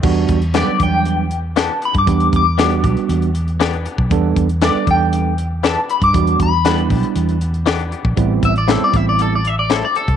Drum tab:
CC |x---------------|----------------|----------------|----------------|
HH |--xxx-x-x-x-x-xx|xxx-xxxxxxxxxxx-|x-xxx-x-x-x-x-xx|xxx-xxoxxxxxxxx-|
SD |----o-------o---|----o-------o---|----o-------o---|----o-------o---|
BD |o-o---o--------o|o-o---o--------o|o-o---o--------o|o-o---o--------o|

CC |----------------|
HH |x-xxx-x-x-x-x-xx|
SD |----o-------o---|
BD |o-o---o--------o|